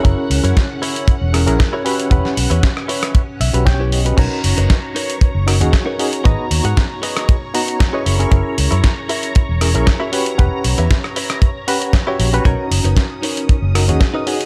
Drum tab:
CC |----------------|----------------|x---------------|----------------|
HH |x-oxx-oxx-oxx-ox|x-oxx-oxx-oxx-ox|x-oxx-oxx-oxx-ox|x-oxx-oxx-oxx-ox|
SD |----o-----r-o---|-o--or-r----o---|----o-----r-o---|----o--r----o---|
BD |o---o---o---o---|o---o---o---o---|o---o---o---o---|o---o---o---o---|

CC |----------------|----------------|----------------|
HH |x-oxx-oxx-oxx-ox|x-oxx-oxx-oxx-ox|x-oxx-oxx-oxx-ox|
SD |----o-----r-o---|----or-r----o---|----o-----r-o---|
BD |o---o---o---o---|o---o---o---o---|o---o---o---o---|